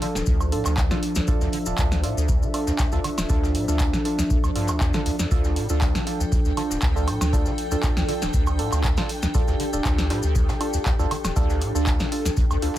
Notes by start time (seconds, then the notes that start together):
Already playing: F3 D4 A4
0.02 D3 D4 F4 A4, closed hi-hat, open hi-hat
0.15 D1, snare, maracas
0.26 D2, kick, closed hi-hat, maracas
0.41 high woodblock, maracas
0.52 A2 D4 F4 A4, open hi-hat
0.66 D2, clap, high woodblock, maracas
0.77 kick, snare, clap, closed hi-hat, maracas
0.91 D3 D4 F4 A4, snare, maracas
1.03 closed hi-hat, open hi-hat
1.15 D2, snare, closed hi-hat, maracas
1.27 D2 D4 F4 A4 E5, kick, closed hi-hat, maracas
1.41 D2, snare, maracas
1.52 D3, closed hi-hat, open hi-hat
1.66 D1 D4 F4 A4, maracas
1.78 D2, kick, snare, clap, closed hi-hat, maracas
1.92 snare, closed hi-hat, maracas
2.03 A2 D4 F4 A4, closed hi-hat, open hi-hat
2.17 D2, maracas
2.28 kick, closed hi-hat, maracas
2.42 D3, maracas
2.54 D4 F4 A4, closed hi-hat, open hi-hat, high woodblock
2.67 D2, snare, maracas
2.79 D2, kick, snare, clap, closed hi-hat, maracas
2.92 D2 D4 F4 A4, closed hi-hat, maracas
3.04 D3, closed hi-hat, open hi-hat, high woodblock
3.18 D1, snare, high woodblock, maracas
3.29 D2 D4 F4 A4, kick, closed hi-hat, maracas
3.43 snare, maracas
3.55 A2, closed hi-hat, open hi-hat
3.68 D2 D4 F4 A4, maracas
3.79 kick, snare, clap, closed hi-hat, maracas
3.93 D3, snare, maracas
4.05 D4 F4 A4, closed hi-hat, open hi-hat
4.19 D2, snare, maracas
4.30 D2, kick, maracas
4.44 D2, high woodblock, maracas
4.56 G2 D4 F4 A4, closed hi-hat, open hi-hat
4.68 D2, clap, high woodblock, maracas
4.81 E2, kick, snare, clap, closed hi-hat, maracas
4.93 D3 D4 F4 A4 G5, snare, maracas
5.05 D2, closed hi-hat, open hi-hat
5.19 F2, snare, closed hi-hat, maracas
5.31 D2 D4 F4 A4, kick, closed hi-hat, maracas
5.44 snare, maracas
5.56 A2, closed hi-hat, open hi-hat
5.69 D2 D4 F4 A4, maracas
5.81 kick, snare, clap, closed hi-hat, maracas
5.95 D3, snare, closed hi-hat, maracas
6.07 D4 F4 A4, closed hi-hat, open hi-hat
6.20 D2, maracas
6.32 D2, kick, closed hi-hat, maracas
6.45 D2, maracas
6.57 D3 D4 F4 A4, closed hi-hat, open hi-hat, high woodblock
6.70 D1, snare, maracas
6.82 D2, kick, snare, clap, closed hi-hat, maracas
6.96 D4 F4 A4, closed hi-hat, maracas
7.07 A2, closed hi-hat, open hi-hat, high woodblock
7.21 D2, snare, high woodblock, maracas
7.33 D4 F4 A4, kick, closed hi-hat, maracas
7.46 D3, snare, maracas
7.58 closed hi-hat, open hi-hat
7.71 D2 D4 F4 A4, maracas
7.83 D2, kick, snare, clap, closed hi-hat, maracas
7.97 D2, snare, maracas
8.09 D3 D4 F4 A4, closed hi-hat, open hi-hat
8.22 D1, snare, maracas
8.33 D2, kick, closed hi-hat, maracas
8.47 high woodblock, maracas
8.59 A2 D4 F4 A4, open hi-hat
8.72 D2, clap, high woodblock, maracas
8.84 kick, snare, clap, closed hi-hat, maracas
8.97 D3 D4 F4 A4, snare, maracas
9.09 closed hi-hat, open hi-hat
9.23 D2, snare, closed hi-hat, maracas
9.34 D2 D4 F4 G4 A4, kick, closed hi-hat, maracas
9.48 D2, snare, maracas
9.60 D3, closed hi-hat, open hi-hat
9.73 D1 D4 F4 A4, maracas
9.85 D2, kick, snare, clap, closed hi-hat, maracas
9.98 snare, closed hi-hat, maracas
10.10 A2 D4 F4 A4, snare, closed hi-hat, open hi-hat
10.23 D2, maracas
10.35 kick, closed hi-hat, maracas
10.49 D3, snare, closed hi-hat, maracas
10.61 D4 F4 A4, open hi-hat, high woodblock
10.73 D2, closed hi-hat, maracas
10.86 D2, kick, snare, clap, closed hi-hat, maracas
10.99 D2 D4 F4 A4, closed hi-hat, maracas
11.11 D3, closed hi-hat, open hi-hat, high woodblock
11.24 D1, snare, high woodblock, maracas
11.36 D2 D4 F4 A4, kick, closed hi-hat, maracas
11.50 snare, maracas
11.61 A2, closed hi-hat, open hi-hat
11.75 D2 D4 F4 A4, maracas
11.86 kick, snare, clap, closed hi-hat, maracas
12.00 D3, snare, maracas
12.12 D4 F4 A4, closed hi-hat, open hi-hat
12.25 D2, snare, closed hi-hat, maracas
12.37 D2, kick, closed hi-hat, maracas
12.51 D2, high woodblock, maracas
12.62 D2 D4 F4 A4, closed hi-hat, open hi-hat